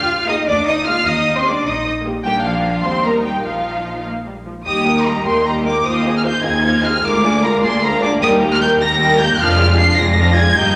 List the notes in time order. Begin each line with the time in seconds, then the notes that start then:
Already playing: D2 F4 F5 F6
0.28 A#3 D#4 G#4 D#5 D#6
0.48 D2 D4 D5 D6
0.68 D#4 D#5 D#6
0.87 A#3 F4 G#4 F5 F6
1.07 D#2 D#4 D#5 D#6
1.37 C4 C5 C6
1.46 A#3 D4 G4 D5 D6
1.66 A#1 D#4 D#5 D#6
2.05 A#3 G4
2.24 A#1 G3 A#3 D4 G4 G5
2.44 F3 F4 F5
2.84 D#2 G3 C4 D#4 C5 C6
3.04 A#3 A#4 A#5
3.24 G3 G4 G5
3.44 A#1 F3 D#4 F4 F5
4.05 A#3
4.26 G3
4.46 F3
4.66 D#2 G3 G4 D#5 D#6
4.87 A#3 D#4 A#4 G5
5.05 G3 G4 D#5 A#5
5.25 D#2 A#3 D#4 A#4 G5 C6
5.46 G3 G4 D#5 A#5
5.66 A#3 D#4 A#4 G5 D6
5.85 D#2 D#4 F4 C5 F5 D#6
6.05 C4 D#4 G#4 D#5
6.17 F6
6.24 D#4 F4 C5 F5 G6
6.44 D#2 C4 D#4 G#4 D#5 G#6
6.64 D#4 F4 C5 F5
6.84 C4 D#4 G#4 D#5 F6
7.04 D2 G#3 F4 A#4 F5 D6
7.24 A#3 D4 G#4 D5
7.43 G#3 F4 A#4 F5 A#5
7.63 D2 A#3 D4 G#4 D5 C6
7.83 G#3 F4 A#4 F5 A#5
8.02 A#3 D4 G#4 D5 D6
8.21 D#2 G3 D#4 A#4 G5 D#6
8.42 A#3 G4 A#5
8.54 F6
8.61 G3 D#4 A#4 G5 G6
8.80 D#2 A#3 G4 A#5 A#6
9.00 G3 D#4 A#4 G5
9.20 A#3 G4 A#5 G6
9.39 F1 F2 F3 D4 F4 F5 F6
9.59 G#3 F4 G#4 D5
9.78 F3 D4 F4 F5 C7
9.98 F1 F2 G#3 F4 G#4 D5 A#6
10.17 F3 D4 F4 F5
10.37 G#3 F4 G#4 D5 G#6
10.56 G1 G2 A#3 D#4 G4 D#5 G6